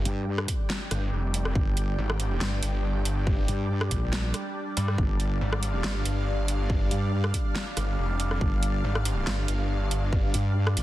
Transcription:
Already playing: analog synth pad G3 D4 D5 G5
0.05 wobble bass G2, closed hi-hat
0.38 cross-stick
0.48 kick, closed hi-hat
0.70 snare
0.91 detuned saw bass G1, cross-stick, closed hi-hat
1.13 detuned saw bass F1
1.34 closed hi-hat
1.45 cross-stick
1.55 wobble bass G1, kick
1.77 closed hi-hat
1.98 detuned saw bass G#1
2.10 cross-stick
2.20 closed hi-hat
2.41 detuned saw bass G1, snare
2.63 detuned saw bass G1, closed hi-hat
3.05 closed hi-hat
3.27 kick
3.48 wobble bass G2, closed hi-hat
3.81 cross-stick
3.91 wobble bass A#1, kick, closed hi-hat
4.13 snare
4.34 cross-stick, closed hi-hat
4.77 detuned saw bass G2, closed hi-hat
4.88 cross-stick
4.98 wobble bass G1, analog synth pad F5, kick
5.20 closed hi-hat
5.41 detuned saw bass G#1
5.53 cross-stick
5.63 closed hi-hat
5.84 detuned saw bass G1, snare
6.05 detuned saw bass G1, closed hi-hat
6.48 closed hi-hat
6.70 kick
6.91 wobble bass G2, closed hi-hat
7.24 cross-stick
7.34 kick, closed hi-hat
7.55 snare
7.77 detuned saw bass G1, cross-stick, closed hi-hat
7.98 detuned saw bass F1
8.20 closed hi-hat
8.31 cross-stick
8.41 wobble bass G1, kick
8.63 closed hi-hat
8.84 detuned saw bass G#1
8.95 cross-stick
9.05 closed hi-hat
9.27 detuned saw bass G1, snare
9.48 detuned saw bass G1, closed hi-hat
9.91 closed hi-hat
10.13 kick
10.34 wobble bass G2, closed hi-hat
10.67 cross-stick
10.77 wobble bass A#1, closed hi-hat

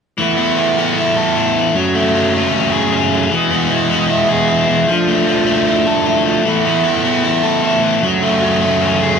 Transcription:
0.18 distorted electric guitar A2 E3 A3 B3 E4, overdriven electric guitar E3
0.37 overdriven electric guitar B3
0.57 overdriven electric guitar E3
0.78 overdriven electric guitar B3
0.97 overdriven electric guitar E4
1.17 overdriven electric guitar A4
1.36 overdriven electric guitar E4
1.57 overdriven electric guitar E3
1.74 distorted electric guitar F#2 C#3 F#3 A3 C#4 F#4, overdriven electric guitar F#3
1.95 overdriven electric guitar A3
2.14 overdriven electric guitar F#3
2.34 overdriven electric guitar A3
2.52 overdriven electric guitar C#4
2.72 overdriven electric guitar G#4
2.92 overdriven electric guitar C#4
3.12 overdriven electric guitar F#3
3.30 distorted electric guitar E2 B2 E3 G#3 B3 G#4, overdriven electric guitar E3
3.51 overdriven electric guitar B3
3.71 overdriven electric guitar E3
3.90 overdriven electric guitar B3
4.09 overdriven electric guitar E4
4.29 overdriven electric guitar G#4
4.49 overdriven electric guitar E4
4.67 overdriven electric guitar E3
4.88 overdriven electric guitar F3, distorted electric guitar F3 A3 D4
5.07 overdriven electric guitar A3
5.26 overdriven electric guitar F3
5.46 overdriven electric guitar A3
5.67 overdriven electric guitar E4
5.87 overdriven electric guitar A4
6.06 overdriven electric guitar E4
6.26 overdriven electric guitar F3
6.45 distorted electric guitar A2 E3 A3 B3 E4, overdriven electric guitar E3
6.64 overdriven electric guitar B3
6.84 overdriven electric guitar E3
7.05 overdriven electric guitar B3
7.24 overdriven electric guitar E4
7.43 overdriven electric guitar A4
7.63 overdriven electric guitar E4
7.83 overdriven electric guitar E3
8.02 distorted electric guitar F#2 C#3 F#3 A3 C#4 F#4, overdriven electric guitar F#3
8.22 overdriven electric guitar A3
8.42 overdriven electric guitar F#3
8.62 overdriven electric guitar A3
8.81 overdriven electric guitar C#4
9.01 overdriven electric guitar G#4

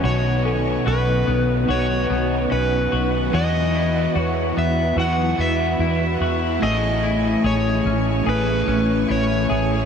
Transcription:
Already playing: clean electric guitar E3 B3 C#4
0.02 fretless electric bass B1, overdriven electric guitar B2 D#3, clean electric guitar B2 F#4, string machine B4 D#5 F#5 C#6, electric slide guitar C#5
0.06 overdriven electric guitar F#3 B3 C#4
0.10 overdriven electric guitar F#4
0.45 clean electric guitar C#4, celesta A4
0.86 fretless electric bass B1, clean electric guitar F#4, electric slide guitar B4
1.27 fretless electric bass B1, clean electric guitar B3
1.65 fretless electric bass B1, overdriven electric guitar B2 D#3, clean electric guitar F#4
1.70 overdriven electric guitar F#3 B3 C#4, electric slide guitar C#5
1.74 overdriven electric guitar F#4
2.10 fretless electric bass B1, clean electric guitar B3
2.51 fretless electric bass B1, clean electric guitar C#4, electric slide guitar B4
2.92 fretless electric bass B1, clean electric guitar F#4
3.31 fretless electric bass E2, overdriven electric guitar E3 F#3 B3 E4, clean electric guitar E3 F#4, string machine E4, electric slide guitar D#5
3.35 overdriven electric guitar F#4
3.73 clean electric guitar E4, overdriven electric guitar E4 F#4
3.78 overdriven electric guitar B3
4.16 fretless electric bass E2, clean electric guitar F#4
4.21 electric slide guitar C#5
4.57 fretless electric bass E2, clean electric guitar B3, electric slide guitar E5
4.97 fretless electric bass E2, overdriven electric guitar E3 F#3 B3 E4, clean electric guitar F#4, celesta B4, electric slide guitar F#5
5.01 overdriven electric guitar F#4
5.23 celesta E4
5.37 fretless electric bass E2, clean electric guitar B3, overdriven electric guitar E4 F#4, electric slide guitar E5
5.43 overdriven electric guitar B3
5.79 fretless electric bass E2, clean electric guitar E4
6.21 fretless electric bass E2, clean electric guitar F#4
6.60 fretless electric bass A1, overdriven electric guitar A3 C#4, clean electric guitar A3 G#4, string machine A3 G#5 C#6, electric slide guitar D#5
6.66 overdriven electric guitar E4 G#4
7.03 clean electric guitar E4
7.44 fretless electric bass A1, clean electric guitar G#4, electric slide guitar C#5
7.85 fretless electric bass A1, clean electric guitar C#4
8.24 fretless electric bass A1, overdriven electric guitar A3, clean electric guitar G#4
8.28 overdriven electric guitar C#4 E4, electric slide guitar B4
8.33 overdriven electric guitar G#4
8.67 fretless electric bass A1, clean electric guitar C#4
9.08 fretless electric bass A1, clean electric guitar E4, electric slide guitar C#5
9.49 fretless electric bass A1, clean electric guitar G#4, celesta E5

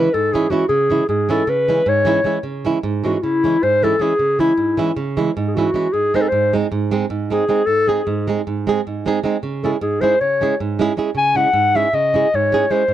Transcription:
Already playing: clarinet B4
0.14 nylon-string guitar G#2, clarinet A4
0.33 nylon-string guitar E3 G#3 C#4 E4, clarinet G#4
0.50 nylon-string guitar E3 G#3 C#4 E4, clarinet F#4
0.68 nylon-string guitar C#3, clarinet G#4
0.89 nylon-string guitar E3 G#3 C#4 E4
1.09 nylon-string guitar G#2, clarinet G#4
1.29 nylon-string guitar E3 G#3 C#4 E4, clarinet A4
1.47 nylon-string guitar C#3, clarinet B4
1.68 nylon-string guitar E3 G#3 C#4 E4
1.86 nylon-string guitar G#2, clarinet C#5
2.05 nylon-string guitar E3 G#3 C#4 E4
2.24 nylon-string guitar E3 G#3 C#4 E4
2.43 nylon-string guitar C#3
2.65 nylon-string guitar E3 G#3 C#4 E4
2.83 nylon-string guitar G#2
3.04 nylon-string guitar E3 G#3 C#4 E4, clarinet F#4
3.15 clarinet F#4
3.22 nylon-string guitar C#3, clarinet E4
3.44 nylon-string guitar E3 G#3 C#4 E4
3.63 nylon-string guitar G#2, clarinet C5
3.82 nylon-string guitar E3 G#3 C#4 E4, clarinet A4
4.00 nylon-string guitar E3 G#3 C#4 E4, clarinet G#4
4.19 nylon-string guitar C#3
4.39 nylon-string guitar E3 G#3 C#4 E4, clarinet E4
4.57 nylon-string guitar G#2
4.77 nylon-string guitar E3 G#3 C#4 E4
4.96 nylon-string guitar C#3
5.17 nylon-string guitar E3 G#3 C#4 E4
5.37 nylon-string guitar G#2
5.47 clarinet G#4
5.55 nylon-string guitar E3 G#3 C#4 E4, clarinet F#4
5.74 nylon-string guitar E3 G#3 C#4 E4
5.93 nylon-string guitar G#2, clarinet G#4
6.14 nylon-string guitar G#3 C4 D#4 G#4, clarinet C5
6.21 clarinet A4
6.28 nylon-string guitar G#2, clarinet C5
6.53 nylon-string guitar G#3 C4 D#4 G#4
6.72 nylon-string guitar G#2
6.91 nylon-string guitar G#3 C4 D#4 G#4
7.10 nylon-string guitar G#2
7.30 nylon-string guitar G#3 C4 D#4 G#4, clarinet G#4
7.49 nylon-string guitar G#3 C4 D#4 G#4
7.66 nylon-string guitar G#2, clarinet A4
7.87 nylon-string guitar G#3 C4 D#4 G#4, clarinet G#4
8.07 nylon-string guitar G#2
8.28 nylon-string guitar G#3 C4 D#4 G#4
8.47 nylon-string guitar G#2
8.67 nylon-string guitar G#3 C4 D#4 G#4
8.87 nylon-string guitar G#2
9.06 nylon-string guitar G#3 C4 D#4 G#4
9.24 nylon-string guitar G#3 C4 D#4 G#4
9.43 nylon-string guitar C#3
9.64 nylon-string guitar G#3 C#4 E4 G#4, clarinet A4
9.81 nylon-string guitar G#2, clarinet G#4
10.01 nylon-string guitar G#3 C#4 E4 G#4, clarinet C5
10.21 nylon-string guitar C#3, clarinet C#5
10.41 nylon-string guitar G#3 C#4 E4 G#4
10.60 nylon-string guitar G#2
10.79 nylon-string guitar G#3 C#4 E4 G#4
10.97 nylon-string guitar G#3 C#4 E4 G#4
11.15 nylon-string guitar C#3, clarinet G#5
11.35 nylon-string guitar G#3 C#4 E4 G#4, clarinet F#5
11.53 nylon-string guitar G#2
11.75 nylon-string guitar G#3 C#4 E4 G#4, clarinet E5
11.93 nylon-string guitar C#3, clarinet D#5
12.14 nylon-string guitar G#3 C#4 E4 G#4
12.34 nylon-string guitar G#2, clarinet C#5
12.52 nylon-string guitar G#3 C#4 E4 G#4
12.71 nylon-string guitar G#3 C#4 E4 G#4, clarinet C5
12.88 nylon-string guitar G#2

